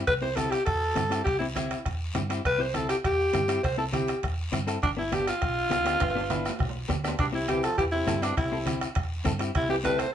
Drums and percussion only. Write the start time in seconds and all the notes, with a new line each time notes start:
0.07 bombo low, bombo rim, high conga, high timbale, long guiro
0.37 bombo rim, high conga, high timbale, short guiro
0.52 bombo rim, high timbale, short guiro
0.66 bombo low, bombo rim, high conga, high timbale, long guiro
0.96 bombo rim, high conga, high timbale, short guiro
1.12 bombo rim, high timbale, short guiro
1.26 bombo low, bombo rim, high conga, high timbale, long guiro
1.56 bombo rim, high conga, high timbale, short guiro
1.71 bombo rim, high timbale, short guiro
1.86 bombo low, bombo rim, high conga, high timbale, long guiro
2.15 bombo rim, high conga, high timbale, short guiro
2.30 bombo rim, high timbale, short guiro
2.45 bombo low, bombo rim, high conga, high timbale, long guiro
2.74 bombo rim, high conga, high timbale, short guiro
2.89 bombo rim, high timbale, short guiro
3.04 bombo low, bombo rim, high conga, high timbale, long guiro
3.34 bombo rim, high conga, high timbale, short guiro
3.48 bombo rim, high timbale, short guiro
3.64 bombo low, bombo rim, high conga, high timbale, long guiro
3.93 bombo rim, high conga, high timbale, short guiro
4.08 bombo rim, high timbale, short guiro
4.23 bombo low, bombo rim, high conga, high timbale, long guiro
4.53 bombo rim, high conga, high timbale, short guiro
4.68 bombo rim, high timbale, short guiro
4.82 bombo low, bombo rim, high conga, high timbale, long guiro
5.12 bombo rim, high conga, high timbale, short guiro
5.27 bombo rim, high timbale, short guiro
5.42 bombo low, bombo rim, high conga, high timbale, long guiro
5.71 bombo rim, high conga, high timbale, short guiro
5.86 bombo rim, high timbale, short guiro
6.00 bombo low, bombo rim, high conga, high timbale, long guiro
6.10 high timbale
6.20 high timbale
6.30 bombo rim, high conga, high timbale, short guiro
6.45 bombo rim, low timbale, short guiro
6.59 bombo low, bombo rim, high conga, low timbale, long guiro
6.69 low timbale
6.88 bombo low, bombo rim, high conga, low timbale, short guiro
7.04 bombo rim, low timbale, short guiro
7.19 bombo low, bombo rim, high conga, high timbale, long guiro
7.48 bombo rim, high conga, high timbale, short guiro
7.63 bombo rim, high timbale, short guiro
7.78 bombo low, bombo rim, high conga, high timbale, long guiro
8.07 bombo rim, high conga, high timbale, low timbale, short guiro
8.22 bombo rim, high timbale, short guiro
8.37 bombo low, bombo rim, high conga, high timbale, long guiro
8.66 bombo rim, high conga, high timbale, short guiro
8.81 bombo rim, high timbale, short guiro
8.95 bombo low, bombo rim, high conga, high timbale, long guiro
9.25 bombo low, bombo rim, high conga, high timbale, short guiro
9.39 bombo rim, high timbale, short guiro
9.55 bombo low, bombo rim, high conga, high timbale, long guiro
9.85 bombo rim, high conga, high timbale, short guiro
9.99 bombo rim, high timbale, short guiro